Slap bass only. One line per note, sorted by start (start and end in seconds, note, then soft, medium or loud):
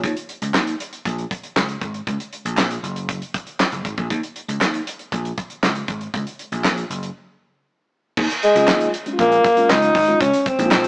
0.04 0.13 D#2 medium
0.42 0.51 C#2 medium
0.55 0.73 D#2 medium
1.05 1.24 A#1 medium
1.56 1.75 C#2 medium
1.81 2.00 G#1 medium
2.07 2.16 C#2 loud
2.45 2.54 A#1 medium
2.57 2.76 A#1 medium
2.83 3.20 F#1 medium
3.72 3.81 F#1 medium
3.85 3.94 G#1 medium
3.98 4.07 A#1 medium
4.10 4.20 D#2 medium
4.48 4.58 C#2 medium
4.61 4.80 D#2 medium
5.12 5.31 A#1 medium
5.63 5.81 C#2 medium
5.88 6.07 G#1 medium
6.14 6.23 C#2 loud
6.52 6.61 A#1 medium
6.64 6.83 A#1 medium
6.90 7.08 F#1 medium
8.17 8.27 D#2 loud
8.55 8.65 C#2 loud
8.68 8.86 D#2 medium
9.19 9.37 A#1 medium
9.70 9.88 C#2 loud
9.95 10.14 G#1 loud
10.21 10.30 C#2 loud
10.59 10.68 A#1 loud
10.71 10.88 A#1 loud